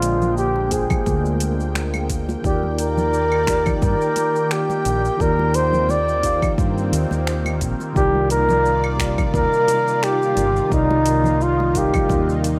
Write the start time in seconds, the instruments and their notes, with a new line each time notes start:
Already playing: fretless electric bass A#1, analog synth pad D3 G#3 A#3 G5, tine electric piano G#3 A#3 F4 C5 D5, flugelhorn F4
0.02 closed hi-hat, shaker
0.22 low conga, shaker
0.37 flugelhorn G4, shaker
0.56 muted conga
0.69 tine electric piano A#3 F4 G#4 C5, flugelhorn G#4, kick, closed hi-hat, shaker
0.74 tine electric piano G5
0.90 kick, low conga, claves, shaker
1.06 fretless electric bass D2, kick, muted conga, shaker
1.25 shaker
1.40 closed hi-hat, shaker
1.60 shaker
1.75 finger snap, muted conga, shaker
1.94 high conga, claves, shaker
2.10 kick, closed hi-hat, shaker
2.29 muted conga, shaker
2.42 fretless electric bass D#2, tine electric piano D#3 D#4 F4 G4, analog synth pad D#3 D5, kick, shaker
2.46 flugelhorn G4, tine electric piano D5
2.63 high conga
2.79 flugelhorn A#4, closed hi-hat, shaker
2.97 muted conga, low conga, shaker
3.13 shaker
3.32 claves
3.45 tine electric piano D#3 D#4 F4 G4, finger snap, kick, closed hi-hat, muted conga, shaker
3.50 tine electric piano D5
3.66 kick, low conga, claves, shaker
3.82 fretless electric bass G2, flugelhorn A#4, kick, shaker
4.01 shaker
4.16 closed hi-hat, muted conga, shaker
4.36 shaker
4.51 flugelhorn G4, finger snap, shaker
4.70 muted conga, shaker
4.85 fretless electric bass A#1, closed hi-hat, shaker
5.05 shaker
5.17 fretless electric bass D#2, tine electric piano D#3 D#4 F4 G4, analog synth pad C4, flugelhorn A#4, kick, shaker
5.22 tine electric piano D5
5.39 muted conga, high conga
5.54 flugelhorn C5, closed hi-hat, shaker
5.73 low conga, shaker
5.89 flugelhorn D5, muted conga, shaker
6.09 shaker
6.21 tine electric piano D#3 D#4 F4 G4, kick, closed hi-hat, shaker
6.26 tine electric piano F5
6.42 kick, low conga, claves, shaker
6.58 fretless electric bass G2, kick, muted conga, shaker
6.78 shaker
6.92 fretless electric bass D#2, closed hi-hat, shaker
7.11 fretless electric bass D#2, muted conga, shaker
7.27 finger snap, shaker
7.45 high conga, claves, shaker
7.61 fretless electric bass A#1, kick, closed hi-hat, shaker
7.80 muted conga, shaker
7.93 fretless electric bass C2, tine electric piano C3 G3 D#4 F4, analog synth pad F4 D5, flugelhorn G4, kick, muted conga, shaker
7.97 tine electric piano A#4 D5
8.15 high conga
8.30 flugelhorn A#4, closed hi-hat, shaker
8.49 muted conga, low conga, shaker
8.65 shaker
8.84 claves
8.97 tine electric piano C3 G3 D#4 F4 A#4, finger snap, kick, closed hi-hat, shaker
9.02 tine electric piano D5
9.18 kick, muted conga, low conga, claves, shaker
9.34 fretless electric bass D#2, flugelhorn A#4, kick, shaker
9.53 shaker
9.68 closed hi-hat, muted conga, shaker
9.88 shaker
10.03 flugelhorn G4, finger snap, shaker
10.22 shaker
10.36 fretless electric bass G1, closed hi-hat, muted conga, shaker
10.56 shaker
10.69 fretless electric bass C2, tine electric piano C3 G3 D#4 F4, analog synth pad D#4, flugelhorn D#4, kick, shaker
10.73 tine electric piano A#4 D5
10.90 muted conga, high conga
11.06 closed hi-hat, shaker
11.24 low conga, shaker
11.41 flugelhorn F4, shaker
11.60 muted conga
11.73 tine electric piano C3 G3 D#4 F4 A#4, kick, closed hi-hat, shaker
11.78 flugelhorn G4, tine electric piano F5
11.94 kick, low conga, claves, shaker
12.09 fretless electric bass D#2, kick, muted conga, shaker
12.29 shaker
12.44 closed hi-hat, shaker